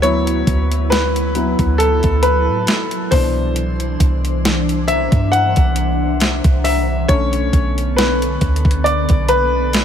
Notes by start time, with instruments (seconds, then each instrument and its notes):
Already playing: 808-style bass D2, ambient pad F#3 E4 B4
0.02 grand piano F#3 B3 E4 C#5, closed hi-hat
0.27 closed hi-hat
0.47 808-style bass D2, kick, closed hi-hat
0.72 closed hi-hat
0.90 grand piano B4, snare, closed hi-hat
1.16 closed hi-hat
1.35 grand piano F#3 B3 E4, ambient pad A4, closed hi-hat
1.59 808-style bass D2, kick, closed hi-hat
1.78 grand piano A4, closed hi-hat
2.03 808-style bass D2, kick, closed hi-hat
2.23 grand piano B4, closed hi-hat
2.48 808-style bass A2
2.67 snare, closed hi-hat
2.91 closed hi-hat
3.11 808-style bass C2, grand piano B2 E3 D4 C5, ambient pad E3 D4 C5, kick, open hi-hat
3.56 closed hi-hat
3.80 closed hi-hat
4.00 808-style bass C2, kick, closed hi-hat
4.25 closed hi-hat
4.45 snare, closed hi-hat
4.69 closed hi-hat
4.88 grand piano E5, closed hi-hat
5.12 808-style bass G2, kick, closed hi-hat
5.32 grand piano F#5, closed hi-hat
5.56 808-style bass C2, kick, closed hi-hat
5.76 closed hi-hat
6.20 snare, closed hi-hat
6.44 808-style bass C2, kick, closed hi-hat
6.64 grand piano E5, open hi-hat
7.08 808-style bass B1, grand piano D3 A3 C#4 C#5, ambient pad D3 B3 A4, kick, closed hi-hat
7.33 closed hi-hat
7.53 808-style bass B1, kick, closed hi-hat
7.78 closed hi-hat
7.96 grand piano B4, snare, closed hi-hat
8.22 closed hi-hat
8.41 808-style bass D2, kick, closed hi-hat, open hi-hat
8.56 closed hi-hat
8.65 kick
8.71 closed hi-hat
8.84 grand piano D5, closed hi-hat
9.09 808-style bass B1, kick, closed hi-hat
9.29 grand piano B4, closed hi-hat
9.73 snare, closed hi-hat